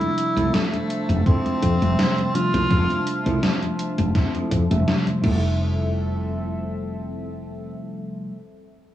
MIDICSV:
0, 0, Header, 1, 8, 480
1, 0, Start_track
1, 0, Key_signature, -1, "major"
1, 0, Tempo, 722892
1, 1798, Time_signature, 4, 2, 24, 8
1, 5941, End_track
2, 0, Start_track
2, 0, Title_t, "Ambient pad"
2, 0, Program_c, 0, 92
2, 0, Note_on_c, 0, 53, 81
2, 0, Note_on_c, 0, 72, 75
2, 0, Note_on_c, 0, 76, 81
2, 0, Note_on_c, 0, 81, 94
2, 3451, Note_off_c, 0, 76, 0
2, 3452, Note_off_c, 0, 53, 0
2, 3452, Note_off_c, 0, 72, 0
2, 3452, Note_off_c, 0, 81, 0
2, 3475, Note_on_c, 0, 60, 82
2, 3475, Note_on_c, 0, 69, 76
2, 3476, Note_on_c, 0, 76, 76
2, 5528, Note_off_c, 0, 69, 0
2, 5529, Note_off_c, 0, 60, 0
2, 5530, Note_off_c, 0, 76, 0
2, 5941, End_track
3, 0, Start_track
3, 0, Title_t, "Clean electric guitar"
3, 0, Program_c, 1, 27
3, 244, Note_on_c, 1, 60, 90
3, 246, Note_on_c, 1, 64, 82
3, 248, Note_on_c, 1, 65, 84
3, 253, Note_on_c, 1, 69, 102
3, 485, Note_off_c, 1, 60, 0
3, 487, Note_off_c, 1, 64, 0
3, 488, Note_off_c, 1, 65, 0
3, 489, Note_off_c, 1, 69, 0
3, 836, Note_on_c, 1, 60, 93
3, 839, Note_on_c, 1, 64, 89
3, 840, Note_on_c, 1, 65, 88
3, 846, Note_on_c, 1, 69, 106
3, 1141, Note_off_c, 1, 60, 0
3, 1142, Note_off_c, 1, 64, 0
3, 1144, Note_off_c, 1, 65, 0
3, 1145, Note_off_c, 1, 69, 0
3, 1793, Note_on_c, 1, 60, 111
3, 1798, Note_on_c, 1, 64, 105
3, 1798, Note_on_c, 1, 65, 103
3, 1802, Note_on_c, 1, 69, 127
3, 1980, Note_off_c, 1, 60, 0
3, 1982, Note_off_c, 1, 64, 0
3, 1983, Note_off_c, 1, 65, 0
3, 1984, Note_off_c, 1, 69, 0
3, 2162, Note_on_c, 1, 60, 88
3, 2166, Note_on_c, 1, 64, 87
3, 2168, Note_on_c, 1, 65, 84
3, 2171, Note_on_c, 1, 69, 98
3, 2405, Note_off_c, 1, 60, 0
3, 2406, Note_off_c, 1, 64, 0
3, 2407, Note_off_c, 1, 65, 0
3, 2409, Note_off_c, 1, 69, 0
3, 2753, Note_on_c, 1, 60, 90
3, 2756, Note_on_c, 1, 64, 85
3, 2758, Note_on_c, 1, 65, 82
3, 2762, Note_on_c, 1, 69, 103
3, 3060, Note_off_c, 1, 60, 0
3, 3061, Note_off_c, 1, 64, 0
3, 3062, Note_off_c, 1, 65, 0
3, 3064, Note_off_c, 1, 69, 0
3, 3462, Note_on_c, 1, 64, 89
3, 3477, Note_on_c, 1, 65, 80
3, 3494, Note_on_c, 1, 69, 95
3, 5515, Note_off_c, 1, 64, 0
3, 5531, Note_off_c, 1, 65, 0
3, 5548, Note_off_c, 1, 69, 0
3, 5941, End_track
4, 0, Start_track
4, 0, Title_t, "Tenor saxophone"
4, 0, Program_c, 2, 66
4, 0, Note_on_c, 2, 64, 112
4, 362, Note_on_c, 2, 57, 94
4, 372, Note_off_c, 2, 64, 0
4, 836, Note_off_c, 2, 57, 0
4, 840, Note_on_c, 2, 60, 111
4, 1558, Note_on_c, 2, 65, 119
4, 1568, Note_off_c, 2, 60, 0
4, 2278, Note_off_c, 2, 65, 0
4, 5941, End_track
5, 0, Start_track
5, 0, Title_t, "FM electric piano"
5, 0, Program_c, 3, 5
5, 0, Note_on_c, 3, 48, 88
5, 0, Note_on_c, 3, 53, 80
5, 0, Note_on_c, 3, 55, 80
5, 0, Note_on_c, 3, 62, 91
5, 1171, Note_off_c, 3, 48, 0
5, 1174, Note_off_c, 3, 53, 0
5, 1176, Note_off_c, 3, 55, 0
5, 1181, Note_off_c, 3, 62, 0
5, 1203, Note_on_c, 3, 48, 83
5, 1204, Note_on_c, 3, 53, 77
5, 1206, Note_on_c, 3, 55, 76
5, 1208, Note_on_c, 3, 57, 77
5, 1211, Note_on_c, 3, 76, 98
5, 1529, Note_off_c, 3, 48, 0
5, 1530, Note_off_c, 3, 53, 0
5, 1531, Note_off_c, 3, 55, 0
5, 1532, Note_off_c, 3, 57, 0
5, 1534, Note_off_c, 3, 76, 0
5, 1548, Note_on_c, 3, 48, 83
5, 1552, Note_on_c, 3, 53, 76
5, 1556, Note_on_c, 3, 55, 75
5, 1562, Note_on_c, 3, 57, 81
5, 1568, Note_on_c, 3, 62, 90
5, 3091, Note_off_c, 3, 48, 0
5, 3093, Note_off_c, 3, 53, 0
5, 3095, Note_off_c, 3, 55, 0
5, 3098, Note_off_c, 3, 57, 0
5, 3101, Note_off_c, 3, 62, 0
5, 3118, Note_on_c, 3, 48, 86
5, 3121, Note_on_c, 3, 53, 76
5, 3123, Note_on_c, 3, 55, 80
5, 3126, Note_on_c, 3, 57, 79
5, 3128, Note_on_c, 3, 76, 94
5, 3447, Note_off_c, 3, 48, 0
5, 3448, Note_off_c, 3, 53, 0
5, 3450, Note_off_c, 3, 55, 0
5, 3451, Note_off_c, 3, 57, 0
5, 3452, Note_off_c, 3, 76, 0
5, 3460, Note_on_c, 3, 48, 86
5, 3469, Note_on_c, 3, 53, 79
5, 3476, Note_on_c, 3, 55, 81
5, 3483, Note_on_c, 3, 57, 81
5, 3491, Note_on_c, 3, 76, 91
5, 5514, Note_off_c, 3, 48, 0
5, 5523, Note_off_c, 3, 53, 0
5, 5529, Note_off_c, 3, 55, 0
5, 5537, Note_off_c, 3, 57, 0
5, 5544, Note_off_c, 3, 76, 0
5, 5941, End_track
6, 0, Start_track
6, 0, Title_t, "Fretless electric bass"
6, 0, Program_c, 4, 35
6, 243, Note_on_c, 4, 36, 86
6, 325, Note_off_c, 4, 36, 0
6, 723, Note_on_c, 4, 29, 92
6, 805, Note_off_c, 4, 29, 0
6, 1077, Note_on_c, 4, 41, 86
6, 1170, Note_off_c, 4, 41, 0
6, 1206, Note_on_c, 4, 29, 84
6, 1286, Note_off_c, 4, 29, 0
6, 1686, Note_on_c, 4, 36, 98
6, 1766, Note_off_c, 4, 36, 0
6, 1797, Note_on_c, 4, 29, 102
6, 1890, Note_off_c, 4, 29, 0
6, 2166, Note_on_c, 4, 36, 90
6, 2246, Note_off_c, 4, 36, 0
6, 2646, Note_on_c, 4, 29, 94
6, 2726, Note_off_c, 4, 29, 0
6, 2996, Note_on_c, 4, 41, 86
6, 3090, Note_off_c, 4, 41, 0
6, 3127, Note_on_c, 4, 29, 110
6, 3207, Note_off_c, 4, 29, 0
6, 3476, Note_on_c, 4, 29, 98
6, 5130, Note_off_c, 4, 29, 0
6, 5941, End_track
7, 0, Start_track
7, 0, Title_t, "Muted clean electric guitar strokes"
7, 1444, Note_on_c, 9, 29, 33
7, 1511, Note_off_c, 9, 29, 0
7, 1684, Note_on_c, 9, 29, 93
7, 1750, Note_off_c, 9, 29, 0
7, 2641, Note_on_c, 9, 29, 33
7, 2707, Note_off_c, 9, 29, 0
7, 3363, Note_on_c, 9, 29, 35
7, 3429, Note_off_c, 9, 29, 0
7, 5941, End_track
8, 0, Start_track
8, 0, Title_t, "Drums"
8, 8, Note_on_c, 9, 42, 26
8, 8, Note_on_c, 9, 63, 30
8, 75, Note_off_c, 9, 42, 0
8, 75, Note_off_c, 9, 63, 0
8, 119, Note_on_c, 9, 42, 90
8, 185, Note_off_c, 9, 42, 0
8, 248, Note_on_c, 9, 42, 49
8, 248, Note_on_c, 9, 63, 58
8, 314, Note_off_c, 9, 42, 0
8, 314, Note_off_c, 9, 63, 0
8, 358, Note_on_c, 9, 38, 115
8, 358, Note_on_c, 9, 42, 51
8, 358, Note_on_c, 9, 63, 49
8, 424, Note_off_c, 9, 38, 0
8, 424, Note_off_c, 9, 42, 0
8, 424, Note_off_c, 9, 63, 0
8, 487, Note_on_c, 9, 42, 26
8, 487, Note_on_c, 9, 63, 28
8, 554, Note_off_c, 9, 42, 0
8, 554, Note_off_c, 9, 63, 0
8, 598, Note_on_c, 9, 42, 83
8, 664, Note_off_c, 9, 42, 0
8, 728, Note_on_c, 9, 42, 51
8, 728, Note_on_c, 9, 63, 51
8, 794, Note_off_c, 9, 42, 0
8, 794, Note_off_c, 9, 63, 0
8, 838, Note_on_c, 9, 36, 113
8, 839, Note_on_c, 9, 42, 54
8, 839, Note_on_c, 9, 63, 47
8, 904, Note_off_c, 9, 36, 0
8, 906, Note_off_c, 9, 42, 0
8, 906, Note_off_c, 9, 63, 0
8, 968, Note_on_c, 9, 42, 25
8, 968, Note_on_c, 9, 63, 28
8, 1034, Note_off_c, 9, 42, 0
8, 1034, Note_off_c, 9, 63, 0
8, 1078, Note_on_c, 9, 36, 57
8, 1078, Note_on_c, 9, 42, 94
8, 1144, Note_off_c, 9, 36, 0
8, 1145, Note_off_c, 9, 42, 0
8, 1208, Note_on_c, 9, 42, 54
8, 1208, Note_on_c, 9, 63, 61
8, 1274, Note_off_c, 9, 42, 0
8, 1274, Note_off_c, 9, 63, 0
8, 1320, Note_on_c, 9, 38, 112
8, 1320, Note_on_c, 9, 42, 51
8, 1320, Note_on_c, 9, 63, 47
8, 1386, Note_off_c, 9, 38, 0
8, 1386, Note_off_c, 9, 42, 0
8, 1386, Note_off_c, 9, 63, 0
8, 1449, Note_on_c, 9, 42, 26
8, 1449, Note_on_c, 9, 63, 31
8, 1515, Note_off_c, 9, 42, 0
8, 1515, Note_off_c, 9, 63, 0
8, 1560, Note_on_c, 9, 42, 87
8, 1627, Note_off_c, 9, 42, 0
8, 1688, Note_on_c, 9, 42, 54
8, 1688, Note_on_c, 9, 63, 60
8, 1754, Note_off_c, 9, 42, 0
8, 1754, Note_off_c, 9, 63, 0
8, 1798, Note_on_c, 9, 36, 108
8, 1798, Note_on_c, 9, 42, 58
8, 1798, Note_on_c, 9, 63, 49
8, 1864, Note_off_c, 9, 36, 0
8, 1864, Note_off_c, 9, 42, 0
8, 1864, Note_off_c, 9, 63, 0
8, 1928, Note_on_c, 9, 42, 26
8, 1928, Note_on_c, 9, 63, 29
8, 1995, Note_off_c, 9, 42, 0
8, 1995, Note_off_c, 9, 63, 0
8, 2038, Note_on_c, 9, 42, 92
8, 2105, Note_off_c, 9, 42, 0
8, 2166, Note_on_c, 9, 42, 54
8, 2166, Note_on_c, 9, 63, 56
8, 2232, Note_off_c, 9, 42, 0
8, 2232, Note_off_c, 9, 63, 0
8, 2278, Note_on_c, 9, 38, 112
8, 2278, Note_on_c, 9, 42, 54
8, 2278, Note_on_c, 9, 63, 49
8, 2345, Note_off_c, 9, 38, 0
8, 2345, Note_off_c, 9, 42, 0
8, 2345, Note_off_c, 9, 63, 0
8, 2408, Note_on_c, 9, 42, 26
8, 2408, Note_on_c, 9, 63, 28
8, 2474, Note_off_c, 9, 42, 0
8, 2474, Note_off_c, 9, 63, 0
8, 2518, Note_on_c, 9, 42, 85
8, 2584, Note_off_c, 9, 42, 0
8, 2645, Note_on_c, 9, 42, 52
8, 2645, Note_on_c, 9, 63, 54
8, 2712, Note_off_c, 9, 42, 0
8, 2712, Note_off_c, 9, 63, 0
8, 2757, Note_on_c, 9, 36, 118
8, 2757, Note_on_c, 9, 38, 63
8, 2757, Note_on_c, 9, 42, 55
8, 2757, Note_on_c, 9, 63, 51
8, 2823, Note_off_c, 9, 36, 0
8, 2823, Note_off_c, 9, 38, 0
8, 2823, Note_off_c, 9, 42, 0
8, 2823, Note_off_c, 9, 63, 0
8, 2886, Note_on_c, 9, 42, 25
8, 2886, Note_on_c, 9, 63, 29
8, 2953, Note_off_c, 9, 42, 0
8, 2953, Note_off_c, 9, 63, 0
8, 2997, Note_on_c, 9, 36, 58
8, 2997, Note_on_c, 9, 42, 98
8, 3063, Note_off_c, 9, 36, 0
8, 3064, Note_off_c, 9, 42, 0
8, 3127, Note_on_c, 9, 42, 60
8, 3127, Note_on_c, 9, 63, 65
8, 3193, Note_off_c, 9, 42, 0
8, 3193, Note_off_c, 9, 63, 0
8, 3238, Note_on_c, 9, 38, 121
8, 3238, Note_on_c, 9, 42, 53
8, 3238, Note_on_c, 9, 63, 48
8, 3304, Note_off_c, 9, 38, 0
8, 3304, Note_off_c, 9, 42, 0
8, 3304, Note_off_c, 9, 63, 0
8, 3365, Note_on_c, 9, 42, 29
8, 3365, Note_on_c, 9, 63, 30
8, 3432, Note_off_c, 9, 42, 0
8, 3432, Note_off_c, 9, 63, 0
8, 3477, Note_on_c, 9, 36, 111
8, 3477, Note_on_c, 9, 49, 82
8, 3543, Note_off_c, 9, 36, 0
8, 3544, Note_off_c, 9, 49, 0
8, 5941, End_track
0, 0, End_of_file